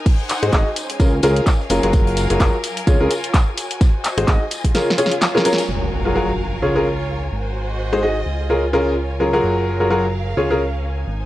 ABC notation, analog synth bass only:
X:1
M:4/4
L:1/16
Q:"Swing 16ths" 1/4=128
K:Db
V:1 name="Analog synth bass" clef=bass
z3 A,, A,,, z3 D,,2 D,, z3 G,,, G,,,- | G,,,3 G,,, G,,, z3 D,, D,, z6 | z3 A,,, A,,, z8 z3 | G,,,8 D,,6 A,,,2- |
A,,,6 D,,8- D,,2 | G,,,8 D,,6 A,,,2 |]